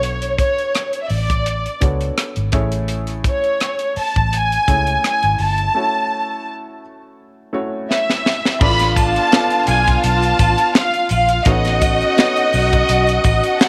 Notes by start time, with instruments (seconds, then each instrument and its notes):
Already playing: fingered electric bass B1, grand piano B3 D4 F#4 A4 C#5, violin section C#5
0.03 closed hi-hat
0.22 closed hi-hat
0.38 violin section C#5, kick, closed hi-hat
0.58 closed hi-hat
0.75 cross-stick, closed hi-hat
0.93 closed hi-hat
1.03 violin section E5
1.10 fingered electric bass A1, violin section D5, open hi-hat
1.30 kick, closed hi-hat
1.46 closed hi-hat
1.66 closed hi-hat
1.81 fingered electric bass C#2, grand piano B3 D4 F#4 A4 C#5, kick, closed hi-hat
2.01 closed hi-hat
2.18 cross-stick, closed hi-hat
2.36 fingered electric bass G#1, closed hi-hat
2.52 fingered electric bass A1, grand piano A3 C#4 E4 G#4 C#5, kick, closed hi-hat
2.72 closed hi-hat
2.88 closed hi-hat
3.07 cross-stick, closed hi-hat
3.24 violin section C#5, kick, closed hi-hat
3.44 closed hi-hat
3.60 cross-stick, closed hi-hat
3.79 closed hi-hat
3.96 violin section A5, muted fingered electric bass stroke, open hi-hat
4.16 fingered electric bass A1, kick, closed hi-hat
4.33 violin section G#5, closed hi-hat
4.52 closed hi-hat
4.68 fingered electric bass C#2, grand piano A3 C#4 E4 G#4 C#5, kick, closed hi-hat
4.87 closed hi-hat
5.04 violin section G#5, cross-stick, closed hi-hat
5.23 fingered electric bass G#1, closed hi-hat
5.39 fingered electric bass G1, violin section A5, open hi-hat
5.58 closed hi-hat
5.74 grand piano A3 C#4 E4 F#4 C#5
7.53 grand piano A3 C#4 E4 F#4 C#5
7.90 violin section E5, snare
8.10 snare
8.26 snare
8.45 snare
8.60 fingered electric bass A1, grand piano B3 D4 E4 A4 D5, horn section B3 D4 F4, string section F4 F5, violin section B5, kick, crash, muted triangle
8.67 grand piano F4
8.79 snare, closed hi-hat, muted triangle
8.91 violin section B5
8.96 violin section A5, kick, closed hi-hat, triangle
9.16 closed hi-hat, muted triangle
9.32 grand piano B3 D4 F4 A4 D5, snare, closed hi-hat, muted triangle
9.50 closed hi-hat, muted triangle
9.67 fingered electric bass B1, violin section G#5, closed hi-hat, triangle
9.87 kick, closed hi-hat, muted triangle
10.03 fingered electric bass B1, violin section A5, closed hi-hat, muted triangle
10.22 closed hi-hat, muted triangle
10.39 fingered electric bass A1, kick, closed hi-hat, triangle
10.58 closed hi-hat, muted triangle
10.75 violin section F5, snare, closed hi-hat, muted triangle
10.94 closed hi-hat, muted triangle
11.09 fingered electric bass A#1, violin section F5, closed hi-hat, triangle
11.29 closed hi-hat, muted triangle
11.45 fingered electric bass A1, grand piano B3 D#4 F#4 A4 C#5, horn section C#4 D#4 F#4, string section F#4 F#5, violin section D#5, kick, closed hi-hat, muted triangle
11.65 snare, closed hi-hat, muted triangle
11.81 kick, closed hi-hat, triangle
12.01 closed hi-hat, muted triangle
12.17 grand piano B3 D#4 F#4 A4 C#5, snare, closed hi-hat, muted triangle
12.36 closed hi-hat, muted triangle
12.53 fingered electric bass B1, open hi-hat, triangle
12.73 kick, closed hi-hat, muted triangle
12.88 fingered electric bass B1, closed hi-hat, muted triangle
13.07 closed hi-hat, muted triangle
13.24 fingered electric bass A1, kick, closed hi-hat, triangle
13.44 closed hi-hat, muted triangle
13.60 string section A4 A5, violin section F#5, snare, closed hi-hat, muted triangle